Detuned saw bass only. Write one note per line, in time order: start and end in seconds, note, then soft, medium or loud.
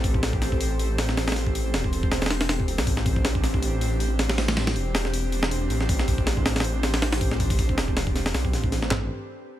0.00 1.75 A1 loud
1.74 2.80 E1 loud
2.79 2.86 C2 medium
2.87 4.77 A1 loud
4.76 5.69 E1 loud
5.70 5.87 A1 loud
5.89 7.79 A1 loud
7.78 8.34 E1 loud
8.35 8.55 B1 medium
8.53 8.90 A1 medium
8.91 9.09 A1 medium